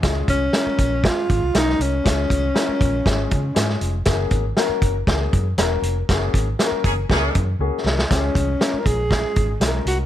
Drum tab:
HH |x-x-x-x-x-x-x-x-|x-x-x-x-x-x-x-x-|x-x-x-x-x-x-x-x-|x-x-x-x-x-x-----|
SD |o---o---o---oo--|o---o---o---oo--|o---o---o---o---|o---o---o-----oo|
BD |o-o---o-o-o-----|o-o---o-o-o-----|o-o---o-o-o-----|o-o---o-o-o-----|

HH |x-x-x-x-x-x-x-x-|
SD |o---o---o---o---|
BD |o-o---o-o-o-----|